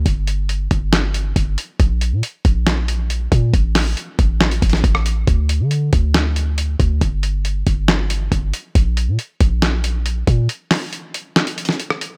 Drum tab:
HH |x-----x-----x-----x-----x-----x-----x-----x-----|x-----x-----x-----x-----x-----x-----x-----x-----|x-----o-----x-----x-----x--x--x-x-x-x-----x-----|x-----x-----x-----x-----x-----x-----x-----x-----|
CP |------------------------x-----------------------|------------------------x-----------------------|------x-----------------x-----------------------|------------------------x-----------------------|
SD |------------------------o-----------------------|------------------------o-----------------------|------o-----------------o--------o-----r--------|------------------------o-----------------------|
BD |o-----------------o-----------------o-----------|o-----------------o-----------------------o-----|o-----------------o-----------o-----o-----------|o-----------------o-----------------------o-----|

HH |x-----x-----x-----x-----x-----x-----x-----x-----|x-----x-----x-----x-----x-----x-----x-----x-----|x-----o-----x-----x-----x--x--x-x-x-x-----x-----|
CP |------------------------x-----------------------|------------------------x-----------------------|------x-----------------x-----------------------|
SD |------------------------o-----------------------|------------------------o-----------------------|------o-----------------o--------o-----r--------|
BD |o-----------------o-----------------o-----------|o-----------------o-----------------------o-----|------------------------------------------------|